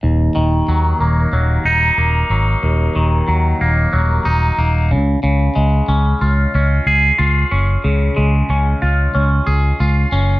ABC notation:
X:1
M:4/4
L:1/8
Q:1/4=92
K:Ebm
V:1 name="Clean electric guitar"
E,, E, G, B, G, E B, G, | E,, E, G, B, G, E B, D, | D, A, D F D A F D | D, A, D F D A F D |]
V:2 name="Fingered electric bass" clef=bass
E,,, E,,, E,, E,,, E,,, E,,, E,,, A,,, | E,,, E,,, E,, E,,, E,,, E,,, E,,, D,, | D,, D,, D,, D,, D,, D,, D,, G,,, | D,, D,, D,, D,, D,, D,, D,, G,,, |]